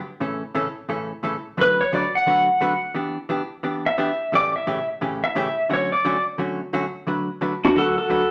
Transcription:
0.20 A2 C#3 E3 A3 C#4 A4
0.54 A2 C#3 E3 A3 C#4 A4
0.89 A2 C#3 E3 A3 C#4 A4
1.23 A2 C#3 E3 A3 C#4 A4
1.57 D3 F#3 A3 D4 F#4 B4
1.61 B4
1.81 C#5
1.92 D3 F#3 A3 D4 F#4 B4 D5
2.15 F#5
2.26 D3 F#3 A3 D4 F#4 B4
2.60 D3 F#3 A3 D4 F#4 B4
2.94 E3 B3 D4 G4
3.29 E3 B3 D4 G4
3.63 E3 B3 D4 G4
3.86 E5
3.98 E3 B3 D4 G4
4.32 A2 C#3 E3 A3 C#4 G4 D5
4.56 E5
4.67 A2 C#3 E3 A3 C#4 G4
5.01 A2 C#3 E3 A3 C#4 G4
5.24 E5
5.35 A2 C#3 E3 A3 C#4 G4
5.69 D3 F#3 A3 C#4 F#4
5.73 C#5
5.92 D5
6.05 D3 F#3 A3 C#4 F#4
6.38 D3 F#3 A3 C#4 F#4
6.73 D3 F#3 A3 C#4 F#4
7.07 D3 F#3 A3 D4 F#4 B4
7.41 D3 F#3 A3 D4 F#4 B4
7.65 D4 F#4
7.75 D3 F#3 A3 D4 F#4 A4 B4
7.98 F#4 A4
8.09 D3 F#3 A3 D4 F#4 B4

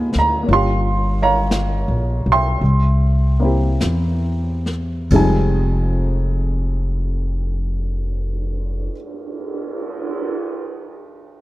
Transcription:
Already playing: D#2 G#3 B3 D#4 F4 B4 F5 G#5
0.13 D2, snare
0.19 A#5
0.43 A#3 C#4
0.48 G1 F4, brush sweep
0.53 G4 F5 C6
1.22 C#5 F5 A#5
1.51 snare, hi-hat pedal
1.88 A#1
2.26 B1
2.32 E5 G5 C6
2.61 C2, brush sweep
3.40 A#3 C4 E4
3.45 G4
3.81 E2, snare, hi-hat pedal
4.66 snare
5.10 F1 F2 F3 G#3, kick, crash
5.15 G3 D#4 G#5
6.04 cymbal swell

